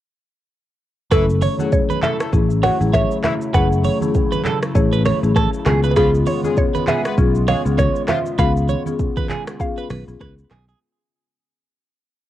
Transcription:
1.12 fingered electric bass F#1, analog synth pad C#3 F#3 A3 E4, horn section E3 E4, marimba A3 C#4 E4 A4, synth pluck A4, clean electric guitar B4, finger snap, kick, cross-stick, shaker
1.30 shaker
1.41 clean electric guitar C#5, synth pluck C#5, open hi-hat, high conga, shaker
1.59 horn section F#3 F#4, marimba A3 C#4 E4 G#4, high conga, shaker
1.72 synth pluck C#5, kick, low conga, shaker
1.90 clean electric guitar B4, high conga, shaker
2.02 horn section A3 A4, clean electric guitar A4, synth pluck E5, clap, high conga, low conga, shaker
2.20 horn section A3 A4, finger snap, cross-stick, shaker
2.33 fingered electric bass A1, marimba A3 C#4 E4 G#4, kick, shaker
2.50 shaker
2.63 horn section F#3 F#4, clean electric guitar C#5, synth pluck F#5, finger snap, cross-stick, open hi-hat, high conga
2.80 fingered electric bass A1, marimba A3 C#4 E4 G#4, shaker
2.93 clean electric guitar C#5, synth pluck E5, finger snap, kick, cross-stick, high conga, shaker
3.11 shaker
3.24 horn section E3 E4, synth pluck E5, finger snap, cross-stick, clap, high conga, low conga, shaker
3.41 shaker
3.54 fingered electric bass F#1, marimba A3 C#4 E4 G#4, clean electric guitar B4, synth pluck F#5, finger snap, kick, cross-stick, shaker
3.72 shaker
3.84 clean electric guitar C#5, open hi-hat, high conga, shaker
4.01 marimba A3 C#4 E4 G#4, high conga, shaker
4.15 kick, low conga, shaker
4.32 clean electric guitar B4, high conga, shaker
4.45 clean electric guitar A4, clap, high conga, low conga, shaker
4.63 finger snap, cross-stick, shaker
4.75 fingered electric bass A1, marimba A3 C#4 E4 G#4, synth pluck C#5, kick, shaker
4.93 clean electric guitar B4, shaker
5.05 clean electric guitar C#5, finger snap, cross-stick, open hi-hat, high conga
5.23 fingered electric bass A1, marimba A3 C#4 E4 G#4, shaker
5.35 clean electric guitar A4, finger snap, kick, cross-stick, high conga, shaker
5.53 shaker
5.66 fingered electric bass C#2, analog synth pad G#3 B3 F4, marimba B3 C#4 F4 G#4, clean electric guitar G#4, finger snap, cross-stick, clap, high conga, low conga, shaker
5.83 clean electric guitar B4, shaker
5.91 synth pluck B4
5.96 horn section F3 F4, marimba B3 C#4 F4 G#4, synth pluck G#4, clean electric guitar B4, finger snap, kick, cross-stick, shaker
6.14 shaker
6.26 clean electric guitar C#5, synth pluck C#5, open hi-hat, high conga, shaker
6.43 horn section G#3 G#4, marimba B3 C#4 F4 G#4, high conga, shaker
6.57 synth pluck C#5, kick, low conga, shaker
6.75 clean electric guitar B4, high conga, shaker
6.87 horn section B3 B4, clean electric guitar G#4, synth pluck E5, clap, high conga, low conga, shaker
7.05 horn section B3 B4, finger snap, cross-stick, shaker
7.17 fingered electric bass B1, marimba B3 C#4 F4 G#4, kick, shaker
7.35 shaker
7.48 horn section G#3 G#4, clean electric guitar C#5, synth pluck F5, finger snap, cross-stick, open hi-hat, high conga
7.65 fingered electric bass C#2, marimba B3 C#4 F4 G#4, shaker
7.78 clean electric guitar C#5, synth pluck C#5, finger snap, kick, cross-stick, high conga, shaker
7.96 shaker
8.08 horn section F3 F4, synth pluck E5, finger snap, cross-stick, clap, high conga, low conga, shaker
8.26 shaker
8.38 fingered electric bass C#2, marimba B3 C#4 F4 G#4, clean electric guitar B4, synth pluck F5, finger snap, kick, cross-stick, shaker
8.57 shaker
8.69 clean electric guitar C#5, high conga, shaker
8.86 marimba B3 C#4 F4 G#4, high conga, shaker
8.99 kick, low conga, shaker
9.17 clean electric guitar B4, kick, high conga, shaker
9.30 clean electric guitar G#4, clap, high conga, low conga, shaker
9.47 finger snap, cross-stick, shaker
9.60 marimba B3 C#4 F4 G#4, synth pluck F5, kick, shaker
9.77 clean electric guitar B4, shaker
9.90 fingered electric bass B1, clean electric guitar B4, finger snap, cross-stick, open hi-hat, high conga, shaker
10.08 fingered electric bass B1, marimba B3 C#4 F4 G#4, shaker
10.20 fingered electric bass C#2, clean electric guitar B4, finger snap, kick, cross-stick, high conga, shaker
10.38 shaker
10.51 fingered electric bass B1, clean electric guitar G#4, finger snap, cross-stick, clap, high conga, low conga, shaker
10.68 clean electric guitar G#4, shaker

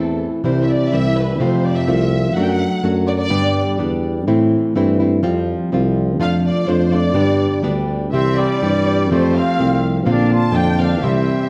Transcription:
Already playing: tuba E2, nylon-string guitar E3 A3 C4 E4, violin section A4
0.44 tuba C2, nylon-string guitar C3 E3 G3 C4 E4, violin section C5
0.63 violin section E5
0.70 violin section D5
0.92 tuba C2, nylon-string guitar E3 G3 C4 E4, violin section E5
1.19 violin section B4
1.40 nylon-string guitar F2 C3 F3 A3 C4 F4, tuba F2, violin section C5
1.66 violin section D5
1.77 violin section E5
1.87 tuba C2, nylon-string guitar F3 A3 C4 F4
2.35 tuba F#2, nylon-string guitar F#3 A3 D4 F#4, violin section F#5
2.42 violin section G5
2.49 violin section F#5
2.83 tuba F#2, nylon-string guitar F#3 A3 D4 F#4
3.07 violin section D5
3.18 violin section D5
3.30 nylon-string guitar G2 D3 G3 B3 D4 G4, tuba G2
3.78 tuba E2, nylon-string guitar G3 B3 D4 G4
4.27 nylon-string guitar A2 E3 A3 C4 E4, tuba A2
4.75 tuba G2, nylon-string guitar E3 A3 C4 E4
5.00 nylon-string guitar A3 C4 E4
5.23 tuba F2, nylon-string guitar F3 G3 C4 F4
5.72 tuba C2, nylon-string guitar F3 G3 C4 F4
6.20 tuba F2, nylon-string guitar F3 A3 D4 F4, violin section F5
6.46 violin section D5
6.67 tuba F2, nylon-string guitar F3 A3 D4 F4, violin section C5
6.92 nylon-string guitar A3 D4 F4, violin section D5
7.14 nylon-string guitar G2 D3 G3 B3 D4 G4, tuba G2
7.63 tuba D2, nylon-string guitar G3 B3 D4 G4
8.13 tuba C2, nylon-string guitar C3 E3 G3 C4 G4, trumpet C4, violin section E5
8.37 trumpet G3, violin section D5
8.62 tuba G2, nylon-string guitar E3 G3 C4 G4
9.10 tuba F2, nylon-string guitar F3 A3 C4 G4, trumpet A3, violin section C5
9.36 trumpet C4, violin section F5
9.58 tuba C2, nylon-string guitar F3 A3 C4 G4
10.05 tuba A#1, nylon-string guitar A#2 D3 A#3 C4 F4, violin section F5
10.11 trumpet D4
10.33 trumpet F4, violin section A5
10.52 tuba F2, nylon-string guitar D3 A#3 C4 F4, trumpet D4, violin section G5
10.79 nylon-string guitar A#3 C4 F4, trumpet D4, violin section F5
11.02 tuba C2, nylon-string guitar C3 E3 G3 C4 E4, trumpet C4, violin section E5

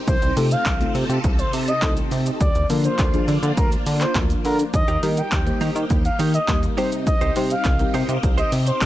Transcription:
Already playing: string machine C4 D#4 G4
0.07 analog synth bass C2, string machine C3 A4, analog synth lead C5, kick, closed hi-hat, shaker
0.22 analog synth bass C2, closed hi-hat, shaker
0.37 analog synth bass C3, synth stab A3 C4 D#4 F4 A4, open hi-hat, shaker
0.51 analog synth lead F5, closed hi-hat, shaker
0.66 analog synth bass C2, kick, clap, closed hi-hat, shaker
0.80 synth stab A3 C4 D#4 F4 A4, closed hi-hat, shaker
0.95 analog synth bass C3, open hi-hat, shaker
1.09 analog synth bass C3, closed hi-hat, shaker
1.24 analog synth bass C2, kick, closed hi-hat, shaker
1.39 analog synth lead C5, closed hi-hat, shaker
1.53 analog synth bass C3, open hi-hat, shaker
1.68 analog synth lead D#5, closed hi-hat, shaker
1.82 analog synth bass C2, synth stab A3 C4 D#4 F4 A4, kick, clap, closed hi-hat, shaker
1.97 closed hi-hat, shaker
2.11 analog synth bass C3, open hi-hat, shaker
2.26 closed hi-hat, shaker
2.41 analog synth bass D2, string machine A#3 D4 F4, analog synth lead D5, kick, closed hi-hat, shaker
2.55 analog synth bass D2, closed hi-hat, shaker
2.69 analog synth bass D3, synth stab F3 A#3 D4 F4 A#4, open hi-hat, shaker
2.84 analog synth lead C5, closed hi-hat, shaker
2.99 analog synth bass D2, kick, clap, closed hi-hat, shaker
3.13 synth stab F3 A#3 D4 F4 G#4, closed hi-hat, shaker
3.28 analog synth bass D3, open hi-hat, shaker
3.43 analog synth bass D3, closed hi-hat, shaker
3.57 analog synth bass D2, analog synth lead A#4, kick, closed hi-hat, shaker
3.72 closed hi-hat, shaker
3.86 analog synth bass D3, open hi-hat, shaker
4.01 analog synth lead C5, clap, closed hi-hat, shaker
4.15 analog synth bass D2, synth stab F3 A#3 D4 F4 A#4, kick, clap, closed hi-hat, shaker
4.30 closed hi-hat, shaker
4.45 analog synth bass D3, analog synth lead A#4, open hi-hat, shaker
4.59 closed hi-hat, shaker
4.74 analog synth bass D#2, string machine A#3 D#4 G4, analog synth lead D#5, muted clean electric guitar stroke, kick, closed hi-hat, shaker
4.88 analog synth bass D#2, clean electric guitar A#3 D#4 G4, closed hi-hat, shaker
5.03 analog synth bass D#3, synth stab G3 A#3 D#4 G4 A#4, clean electric guitar A#3 D#4 G4, open hi-hat, shaker
5.17 analog synth lead G5, muted clean electric guitar stroke, closed hi-hat, shaker
5.32 analog synth bass D#2, kick, clap, closed hi-hat, shaker
5.46 synth stab G3 A#3 D#4 G4 C5, muted clean electric guitar stroke, closed hi-hat, shaker
5.61 analog synth bass D#3, clean electric guitar A#3 D#4 G4, open hi-hat, shaker
5.76 analog synth bass D#3, muted clean electric guitar stroke, closed hi-hat, shaker
5.90 analog synth bass D#2, muted clean electric guitar stroke, kick, closed hi-hat, shaker
6.05 analog synth lead F5, muted clean electric guitar stroke, closed hi-hat, shaker
6.19 analog synth bass D#3, clean electric guitar A#3 D#4 G4, open hi-hat, shaker
6.34 analog synth lead D#5, muted clean electric guitar stroke, closed hi-hat, shaker
6.48 analog synth bass D#2, synth stab G3 A#3 D#4 G4 A#4, muted clean electric guitar stroke, kick, clap, closed hi-hat, shaker
6.63 muted clean electric guitar stroke, closed hi-hat, shaker
6.77 analog synth bass C3, synth stab G3 C4 D#4 G4 C5, string machine C4 G4, clean electric guitar D#4 G4 C5, open hi-hat, shaker
6.92 muted clean electric guitar stroke, closed hi-hat, shaker
7.07 analog synth lead D#5, muted clean electric guitar stroke, kick, closed hi-hat, shaker
7.21 analog synth bass C2, clean electric guitar D#4 G4 C5, closed hi-hat, shaker
7.36 analog synth bass C3, synth stab G3 C4 D#4 G4 C5, clean electric guitar D#4 G4 C5, open hi-hat, shaker
7.50 analog synth lead F5, muted clean electric guitar stroke, closed hi-hat, shaker
7.65 analog synth bass C2, kick, clap, closed hi-hat, shaker
7.79 synth stab G3 C4 D#4 G4 A#4, muted clean electric guitar stroke, closed hi-hat, shaker
7.94 analog synth bass C3, clean electric guitar D#4 G4 C5, open hi-hat, shaker
8.09 analog synth bass C3, muted clean electric guitar stroke, closed hi-hat, shaker
8.23 analog synth bass C2, muted clean electric guitar stroke, kick, closed hi-hat, shaker
8.38 clean electric guitar D#4 G4 C5, analog synth lead D#5, closed hi-hat, shaker
8.52 analog synth bass C3, open hi-hat, shaker
8.66 analog synth lead C5, muted clean electric guitar stroke, closed hi-hat, shaker
8.81 analog synth bass C2, synth stab G3 C4 D#4 G4 D#5, muted clean electric guitar stroke, kick, clap, closed hi-hat, shaker

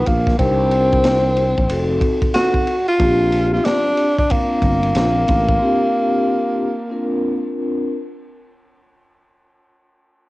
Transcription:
Already playing: vibraphone B3 D#4 F4 A#4
0.06 fretless electric bass A#1, tenor saxophone A#3, kick, ride
0.27 kick, snare
0.38 fretless electric bass C2, tenor saxophone C4, vibraphone D4 D#4 G4 A#4, kick, ride
0.71 ride
0.92 kick, ride
1.04 snare, hi-hat pedal, ride
1.37 ride
1.58 fretless electric bass A#1, kick
1.68 fretless electric bass F1, vibraphone C4 D#4 F#4 A4, ride
2.01 kick, ride
2.22 kick, ride
2.34 tenor saxophone F#4, snare, hi-hat pedal, ride
2.54 kick
2.67 ride
2.88 tenor saxophone F4, ride
2.98 fretless electric bass A#1, vibraphone C4 C#4 F4 G4, kick, ride
3.06 vibraphone D4
3.32 ride
3.54 tenor saxophone F4, snare
3.65 tenor saxophone D4, snare, hi-hat pedal, ride
3.97 ride
4.18 tenor saxophone D4, kick
4.28 tenor saxophone A#3, vibraphone C4 D4 F4 A#4, kick, ride
4.62 fretless electric bass G1, kick, ride
4.83 ride
4.95 fretless electric bass A#1, snare, hi-hat pedal, ride
5.28 fretless electric bass A1, kick, ride
5.49 kick
5.59 vibraphone C4 D4 F4 G4
6.89 vibraphone C4 D4 F4 A#4

